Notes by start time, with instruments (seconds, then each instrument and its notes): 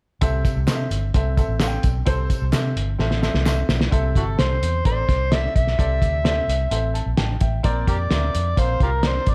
0.21 fingered electric bass C2, grand piano C3 C4 A4 E5, kick, closed hi-hat, tambourine
0.45 kick, closed hi-hat, tambourine
0.56 fingered electric bass C2
0.67 fingered electric bass C3, grand piano C4 A4 D#5, snare, clap, closed hi-hat, tambourine
0.74 grand piano E5
0.91 fingered electric bass G1, closed hi-hat, tambourine
1.14 fingered electric bass C2, grand piano C4 A4 E5, kick, closed hi-hat, tambourine
1.37 grand piano C4 A4 E5, kick, closed hi-hat, tambourine
1.48 fingered electric bass A1
1.60 grand piano C4 A4 F5, snare, clap, closed hi-hat, tambourine
1.67 grand piano G5
1.83 fingered electric bass B1, kick, closed hi-hat, tambourine
2.06 fingered electric bass C2, grand piano C3 C4 A4 C5, kick, closed hi-hat, tambourine
2.30 kick, closed hi-hat, tambourine
2.42 fingered electric bass C2
2.52 fingered electric bass C3, grand piano C4 A4 E5, snare, clap, closed hi-hat, tambourine
2.76 fingered electric bass G1, closed hi-hat
2.99 fingered electric bass A1, grand piano C4 A4 E5, snare
3.11 snare
3.22 grand piano C4 A4 E5, snare, tambourine
3.34 fingered electric bass C2, snare
3.45 grand piano C4 A4 E5, snare, clap, tambourine
3.69 fingered electric bass B1, snare, tambourine
3.81 snare
3.91 fingered electric bass C2, grand piano C3 C4 A4 E5, kick, closed hi-hat
4.16 fingered electric bass G1, harmonica E4 F#4 A4, kick, closed hi-hat
4.38 fingered electric bass C2, grand piano C4 A4 C5, harmonica C5, snare, closed hi-hat
4.62 fingered electric bass E2, closed hi-hat
4.85 fingered electric bass A1, grand piano C4 A4 C5, harmonica C5, kick, closed hi-hat
4.92 grand piano D5
5.08 fingered electric bass C2, kick, snare, closed hi-hat
5.31 grand piano C4 A4 D5, harmonica E5, snare, closed hi-hat
5.55 fingered electric bass B1, harmonica E5, kick, closed hi-hat
5.67 snare
5.78 fingered electric bass C2, grand piano C3 C4 A4 D5, kick, closed hi-hat
6.02 fingered electric bass D2, kick, closed hi-hat
6.24 grand piano C4 A4 D5, snare, closed hi-hat
6.31 grand piano E5
6.48 fingered electric bass C2, closed hi-hat
6.71 fingered electric bass A1, grand piano C4 A4 E5, closed hi-hat
6.94 grand piano A5, closed hi-hat
7.06 fingered electric bass A#1
7.17 fingered electric bass A1, grand piano G5 A5, snare, closed hi-hat
7.41 fingered electric bass A1, grand piano E5 G5, kick, closed hi-hat
7.63 fingered electric bass A#1, grand piano A#2 C4 A#4 D5, kick, closed hi-hat
7.87 fingered electric bass F2, harmonica G4 A#4 D5, kick, closed hi-hat
8.10 fingered electric bass D2, grand piano C4 A#4 E5, snare, closed hi-hat
8.35 fingered electric bass F2, closed hi-hat
8.57 fingered electric bass A#1, grand piano C4 A#4 F5, harmonica C5, kick, closed hi-hat
8.80 fingered electric bass C2, harmonica F4 G4 A#4, kick, closed hi-hat
9.03 grand piano C4 A#4 D5, harmonica C5, snare, closed hi-hat
9.26 fingered electric bass A1, harmonica D5, kick, closed hi-hat